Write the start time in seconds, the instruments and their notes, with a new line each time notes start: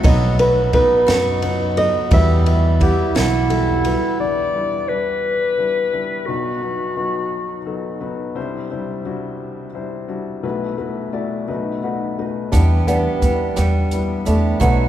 Already playing: steel-string acoustic guitar C4 F#4
0.03 upright bass B1, upright piano B1 B2 F#3 B3 D#4 B4, steel-string acoustic guitar F#3, nylon-string guitar D#5, kick, ride
0.39 upright piano F#3 B3 D#4 F#4, nylon-string guitar B4, ride
0.73 upright piano F#3 B3 D#4 B4, steel-string acoustic guitar D#4, nylon-string guitar B4, kick, ride
1.07 upright bass F#2, steel-string acoustic guitar F#4, snare, ride
1.42 upright piano F#3 B3 D#4 B4, ride
1.77 upright piano F#3 B3 D#4 A4, nylon-string guitar D#5, ride
2.11 upright bass E2, upright piano E2 E3 G3 E4 F#4 B4, steel-string acoustic guitar G3, nylon-string guitar E5, kick, ride
2.46 upright piano G3 E4 F#4 B4, ride
2.80 upright piano G3 E4 B4 F#5, steel-string acoustic guitar E4, clarinet G4, kick, ride
3.15 upright bass B1, clarinet E4, steel-string acoustic guitar F#4, snare, ride
3.50 upright piano G3 E4 F#4 A4, ride
3.85 upright piano G3 E4 F#4 B4, ride
4.19 upright piano E2 E3 G3 D4 E4 B4, clarinet D5
4.54 upright piano G3 D4 E4 B4
4.89 upright piano G3 D4 E4 B4, clarinet B4
5.58 upright piano G3 D4 E4 B4
5.93 upright piano G3 D4 E4 B4
6.26 upright piano B1 B2 F#3 B3 D#4 B4, clarinet F#4
6.61 upright piano F#3 B3 D#4 B4
6.97 upright piano F#3 B3 D#4 B4
7.66 upright piano F#3 B3 D#4 A4
8.01 upright piano F#3 B3 D#4 B4
8.35 upright piano C2 C3 G3 D4 E4 C5
8.71 upright piano G3 D4 E4 C5
9.05 upright piano G3 D4 E4 F#4
9.74 upright piano G3 D4 E4 C5
10.08 upright piano G3 D4 E4 F#4
10.43 upright piano B1 B2 A3 E4 F#4 B4
10.77 upright piano A3 E4 F#4 B4
11.13 upright piano A3 E4 F#4 D5
11.48 upright piano B1 B2 A3 D#4 F#4 B4
11.83 upright piano A3 D#4 F#4 B4 F#5
12.19 upright piano A3 D#4 F#4 B4 D#5
12.52 upright piano E2 E3 G3 D4 E4 B4, upright bass E2, steel-string acoustic guitar B3 G4, nylon-string guitar D4, kick, closed hi-hat
12.87 upright piano G3 D4 E4 B4, nylon-string guitar B3, steel-string acoustic guitar B3 D4 G4, closed hi-hat
13.22 upright bass E2, upright piano G3 D4 E4 B4, steel-string acoustic guitar B3, kick, closed hi-hat
13.56 upright bass E2, nylon-string guitar G3, steel-string acoustic guitar B3, cross-stick, closed hi-hat
13.91 upright piano G3 D4 E4 B4, closed hi-hat
14.25 upright bass E2, upright piano G3 D4 E4 B4, nylon-string guitar A3, steel-string acoustic guitar B3 D4 G4, closed hi-hat
14.60 upright bass B1, upright piano B1 B2 F#3 B3 D#4 B4, steel-string acoustic guitar F#3 F#4, nylon-string guitar B3, kick, closed hi-hat